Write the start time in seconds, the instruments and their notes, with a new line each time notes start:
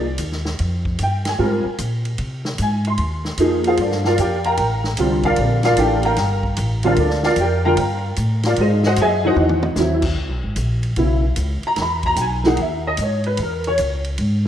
Already playing: upright bass C2, upright piano D5
0.18 upright bass D#2, hi-hat pedal, ride
0.32 snare
0.45 snare
0.59 upright bass F2, ride
0.85 kick
0.99 upright bass G2, hi-hat pedal, ride
1.03 upright piano G5
1.25 upright piano G#5, snare, ride
1.39 upright bass G#2, upright piano G3 C4 F4 A#4
1.65 muted upright bass stroke
1.78 upright bass A#2, hi-hat pedal, ride
2.05 ride
2.18 upright bass C3, ride
2.45 snare
2.58 upright bass G#2, hi-hat pedal, ride
2.62 upright piano G#5
2.85 upright piano C6, ride
2.98 upright bass D#2, ride
3.25 snare
3.38 upright bass F2, upright piano F3 A#3 D#4 G#4, hi-hat pedal, ride
3.64 upright piano F4 G#4 C5 F5, ride
3.77 upright bass G2, upright piano D5, ride
3.82 upright piano D4 A4 A#4
3.91 snare
4.04 upright piano F4 A#4 D5 F5, snare
4.18 upright bass F2, upright piano G4 A#4 D5 G5, hi-hat pedal, ride
4.44 upright piano A#4 F5 G5 A#5, ride
4.57 upright bass A1, ride
4.84 snare
4.97 upright bass C2, upright piano D3 G3 C4 F4, hi-hat pedal, ride
5.23 upright piano F4 A#4 D5 F5, kick, ride
5.36 upright bass A#1, upright piano D5, ride
5.40 upright piano D4 A4 A#4
5.63 upright piano F4 A#4 D5 F5, snare, ride
5.76 upright bass A1, upright piano E3 A3 D4 G4 A#4 D5 G5, hi-hat pedal, ride
6.03 upright piano A#4 F5 G5 A#5, ride
6.16 upright bass G1, snare, ride
6.43 kick
6.57 upright bass A1, hi-hat pedal, ride
6.83 upright piano D3 G3 C4 F4 A#4 D5 F5, ride
6.96 upright bass D2, upright piano D4 A4 A#4 D5, ride
7.10 snare
7.23 upright piano F4 A#4 D5 F5, snare
7.36 upright bass F2, hi-hat pedal, ride
7.40 upright piano G4 A#4 D5 G5
7.65 upright piano D3 G3 C4 F4 A#4 F5 G5 A#5
7.77 upright bass G2, ride
8.16 upright bass A2, hi-hat pedal, ride
8.43 upright piano F4 A#4 D5 F5, snare, ride
8.56 upright bass G#2, ride
8.61 upright piano D#4 G#4 C5 D#5
8.83 upright piano F#4 C5 D#5 F#5, snare
8.96 upright bass F#2, hi-hat pedal, ride
9.01 upright piano G#4 D#5 E5 G#5
9.24 upright piano E3 F#3 C4 D#4 F#4 C5 D#5 F#5
9.36 upright bass E2, mid tom
9.49 mid tom
9.63 mid tom
9.76 upright bass D#2, upright piano E3 F#3 C4 E4, snare, hi-hat pedal
10.02 kick, crash
10.16 upright bass C#2
10.29 upright bass B1
10.43 upright bass G#1
10.56 upright bass A#1, hi-hat pedal, ride
10.83 ride
10.96 upright bass B1, upright piano C#3 F#3 B3 E4, ride
11.36 upright bass C#2, hi-hat pedal, ride
11.63 upright piano A#5, muted upright bass stroke, ride
11.76 upright bass E2, snare, ride
11.82 upright piano B5
12.03 upright piano A#5, kick, ride
12.16 upright bass B1, upright piano G5, hi-hat pedal, ride
12.21 upright piano G#5
12.44 upright piano E3 A#3 D#4 G#4 F#5, snare
12.57 upright bass D#2, ride
12.62 upright piano E5
12.87 upright piano D#5
12.97 upright bass G#2, hi-hat pedal, ride
13.02 upright piano C#5
13.24 upright piano B4, ride
13.37 upright bass E2, ride
13.42 upright piano A#4
13.64 upright piano C#5, ride
13.78 upright bass C#2, hi-hat pedal, ride
14.04 ride
14.18 upright bass G#2, ride